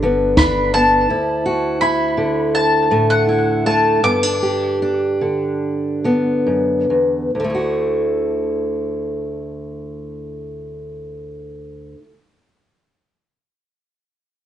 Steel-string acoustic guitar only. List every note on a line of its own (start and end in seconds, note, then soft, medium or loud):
0.00 1.05 G2 medium
0.00 1.05 D3 medium
0.00 0.74 B3 medium
0.00 0.38 D4 medium
0.00 1.06 G4 medium
0.39 1.10 D4 medium
0.75 1.06 B3 medium
1.09 4.03 D2 medium
1.09 1.80 E4 medium
1.46 3.99 F#4 medium
1.82 3.27 E4 medium
2.17 5.20 D3 medium
2.91 4.04 A2 medium
2.91 3.65 A3 medium
3.29 4.00 E4 medium
3.66 4.00 A3 medium
4.03 6.46 G2 medium
4.03 4.23 B3 soft
4.23 4.81 D4 soft
4.43 7.29 G4 medium
4.82 7.29 D4 soft
5.21 6.03 D3 soft
6.04 7.29 D3 soft
6.04 7.30 B3 soft
6.46 6.89 F#2 medium
6.90 7.34 E2 soft
7.35 11.94 D2 medium
7.40 11.99 D3 soft
7.44 12.04 A3 soft
7.50 12.09 E4 soft
7.54 12.14 F#4 soft